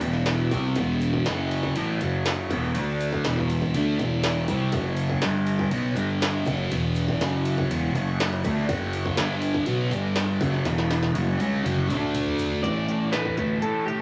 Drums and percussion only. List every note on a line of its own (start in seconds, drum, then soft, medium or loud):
0.01 ride medium
0.01 shaker medium
0.13 snare soft
0.13 shaker soft
0.26 snare loud
0.26 ride medium
0.26 shaker medium
0.51 kick medium
0.51 ride medium
0.51 shaker medium
0.64 shaker soft
0.75 kick loud
0.75 ride medium
0.75 shaker medium
1.01 ride medium
1.01 shaker medium
1.14 kick medium
1.25 snare loud
1.25 ride medium
1.25 shaker medium
1.51 ride medium
1.63 kick medium
1.63 shaker soft
1.76 ride medium
1.76 shaker medium
2.01 ride medium
2.01 shaker medium
2.14 shaker soft
2.25 snare loud
2.25 ride medium
2.25 shaker medium
2.50 kick loud
2.50 ride medium
2.50 shaker medium
2.64 shaker soft
2.75 ride medium
2.75 shaker medium
3.00 ride medium
3.00 shaker medium
3.12 kick medium
3.12 shaker soft
3.24 snare loud
3.24 ride medium
3.24 shaker medium
3.37 kick medium
3.50 ride medium
3.50 shaker medium
3.62 kick medium
3.62 shaker soft
3.74 ride medium
3.74 shaker medium
3.99 kick medium
3.99 ride medium
3.99 shaker medium
4.23 snare loud
4.23 ride loud
4.23 shaker medium
4.48 kick medium
4.48 ride medium
4.48 shaker medium
4.72 kick loud
4.72 ride medium
4.72 shaker medium
4.97 ride medium
4.97 shaker medium
5.10 kick medium
5.22 snare loud
5.22 ride medium
5.22 shaker medium
5.47 ride medium
5.47 shaker medium
5.59 kick medium
5.59 shaker soft
5.71 ride medium
5.71 shaker medium
5.96 ride medium
5.96 shaker loud
6.10 shaker soft
6.21 snare loud
6.21 ride medium
6.21 shaker medium
6.45 kick loud
6.45 ride medium
6.45 shaker medium
6.70 ride medium
6.70 shaker medium
6.95 ride medium
6.95 shaker medium
7.08 kick medium
7.21 snare loud
7.21 ride medium
7.21 shaker medium
7.45 ride medium
7.45 shaker medium
7.57 kick medium
7.57 shaker soft
7.71 ride loud
7.71 shaker medium
7.95 ride medium
7.95 shaker medium
8.08 shaker soft
8.20 snare loud
8.20 ride loud
8.20 shaker medium
8.33 snare soft
8.43 kick medium
8.43 ride medium
8.43 shaker medium
8.58 shaker soft
8.69 kick loud
8.69 ride medium
8.69 shaker medium
8.93 ride medium
8.93 shaker medium
9.06 kick medium
9.17 snare loud
9.17 ride medium
9.17 shaker medium
9.42 ride medium
9.42 shaker medium
9.54 kick medium
9.54 shaker soft
9.66 ride medium
9.66 shaker medium
9.91 ride medium
9.91 shaker medium
10.05 shaker soft
10.16 snare loud
10.16 ride medium
10.16 shaker medium
10.41 kick loud
10.41 ride medium
10.41 shaker medium
10.54 snare soft
10.54 shaker soft
10.65 snare medium
10.65 ride medium
10.65 shaker medium
10.78 snare medium
10.90 snare medium
10.90 ride medium
10.90 shaker medium
11.03 snare medium
11.15 high tom medium
11.15 ride medium
11.15 shaker medium
11.28 high tom medium
11.40 high tom medium
11.40 ride medium
11.40 shaker medium
11.53 mid tom medium
11.53 shaker soft
11.66 mid tom medium
11.66 ride medium
11.66 shaker medium
11.78 mid tom medium
11.90 mid tom medium
11.90 ride medium
11.90 shaker medium
12.02 mid tom medium
12.15 mid tom medium
12.15 ride loud
12.15 shaker medium
12.26 floor tom medium
12.39 floor tom medium
12.39 ride medium
12.39 shaker loud
12.52 floor tom medium
12.64 kick medium
12.64 closed hi-hat medium
12.88 closed hi-hat medium
13.12 snare medium
13.12 closed hi-hat medium
13.25 kick medium
13.37 kick medium
13.37 closed hi-hat medium
13.62 closed hi-hat medium
13.88 closed hi-hat medium